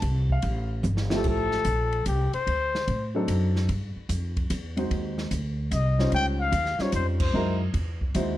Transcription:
Already playing: A5
0.02 C2, kick, ride
0.30 F5, kick
0.42 A1, kick, ride
0.83 G1, hi-hat pedal, high tom
0.97 snare
1.10 F3 A3 E4 G4, snare
1.16 A4
1.24 A1, kick, crash
1.29 A4
1.51 snare
1.65 A#1, kick, hi-hat pedal, ride
1.92 ride
2.06 C2 G4, kick, hi-hat pedal, ride
2.33 C5, muted upright bass stroke, ride
2.47 D2, kick, ride
2.75 snare
2.87 A2, kick, ride
3.15 F#3 C4 D4 D#4 A4
3.28 F#2, kick, hi-hat pedal, ride
3.56 snare
3.69 G2, kick, ride
3.96 muted upright bass stroke
4.09 F2, kick, hi-hat pedal, ride
4.37 kick, ride
4.50 E2, kick, hi-hat pedal, ride
4.77 G#3 C4 D#4 F#4 C5, ride
4.91 D#2, kick, ride
5.18 snare
5.31 D2, kick, hi-hat pedal, ride
5.71 C2 D#5, kick, hi-hat pedal, ride
5.98 G3 C#4 D#4 F4 C5, snare
6.12 C#2 G5, kick, ride
6.40 F5
6.52 D#2, kick, hi-hat pedal, ride
6.66 snare
6.79 G3 C#4 D#4 F4 C5 C#5, muted upright bass stroke, snare
6.92 F2 C5, kick, hi-hat pedal, ride
7.20 C5, kick, crash
7.34 F#2 G#3 D#4 E4 F#4 A#4
7.74 E2, kick, ride
8.01 kick
8.15 D#2 G#3 D#4 E4 F#4 C5, kick, hi-hat pedal, ride

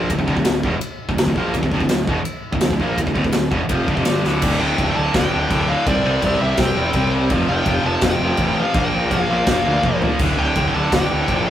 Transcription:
Already playing: A#3
0.10 D1 D2 A2, kick, ride bell
0.19 D1 D2 A2, kick
0.27 D1 D2 A2, kick
0.37 D1 D2 A2, kick
0.45 D1 D2 A2, snare, ride bell
0.63 E1 E2 B2, kick
0.81 ride bell
1.09 D1 D2 A2, kick
1.18 D1 D2 A2, snare, ride bell
1.27 D1 D2 A2, kick
1.36 A#1 A#2 F3 A#3, kick
1.54 D1 D2 A2, kick, ride bell
1.62 D1 D2 A2, kick
1.71 D1 D2 A2, kick
1.80 D1 D2 A2, kick
1.89 D1 D2 A2, snare, ride bell
2.07 E1 E2 B2, kick
2.25 ride bell
2.52 D1 D2 A2, kick
2.61 D1 D2 A2, snare, ride bell
2.71 D1 D2 A2, kick
2.80 A#1 A#2 F3 A#3, kick
2.98 D1 D2 A2, kick, ride bell
3.07 D1 D2 A2, kick
3.15 D1 D2 A2, kick
3.24 D1 D2 A2, kick
3.32 D1 D2 A2, snare, ride bell
3.51 E1 E2 B2, kick
3.69 F1 F2 C3 F3, kick, ride bell
3.88 D1 D2 A2, kick
3.97 F1 F2 C3, kick
4.05 G1 G2 D3 G3, snare, ride bell
4.24 D1 D2 A2 D3, snare
4.42 D1 D2 A2 D3, kick, crash
4.60 D1 D2 A2 D3 G5
4.78 D1 D2 A2 D3, kick, crash
4.96 D1 D2 A2 D3 A5
5.14 D1 D2 A2 D3 G5, kick, snare, crash
5.32 D1 D2 A2 D3
5.50 D1 D2 A2 D3, kick, crash
5.68 D2 A2 D3 F5
5.87 C2 C3 G3 C4 D5, kick, crash
6.05 C2 C3 G3 C4
6.22 C2 C3 G3 C4, kick, crash
6.41 C2 C3 G3 C4 E5
6.57 C2 C3 G3 G5, kick, snare, crash
6.62 C4
6.77 E1 C3 G3 C4
6.93 C2 C3 G3 C4, kick, crash
7.15 C3 G3 C4
7.30 F1 F2 C3 F3, kick, crash
7.49 F1 F2 C3 F3 G5
7.66 F1 F2 C3 F3, kick, crash
7.84 F1 F2 C3 F3 A5
8.01 F1 F2 G5, kick, snare, crash
8.05 C3 F3
8.21 F1 F2 C3 F3
8.37 A1 F2, kick, crash
8.41 C3 F3
8.57 F2 C3 F3
8.62 F5
8.74 A#1 A#2 F3 A#3, kick, crash
8.79 G5
8.93 A#1 A#2 F3 A#3
9.10 A#1 A#2 F3 A#3, kick, crash
9.22 F5
9.30 A#1 A#2 F3 A#3
9.34 F5
9.47 A#1 A#2 F3 A#3 F5, kick, snare, crash
9.66 D2 A#2 F3 A#3
9.83 A#1 A#2 F3 A#3, kick, high tom
10.02 A#2 F3 A#3, floor tom
10.19 D1 D2 A2 D3, kick, splash, crash
10.38 D1 D2 A2 D3 G5
10.56 D1 D2 A2 D3, kick, crash
10.75 D1 D2 A2 D3 A5
10.92 D1 D2 A2 D3 G5, kick, snare, crash
11.10 D1 D2 A2 D3
11.28 A#1 D2 A2 D3, kick, crash
11.45 D2 A2 D3

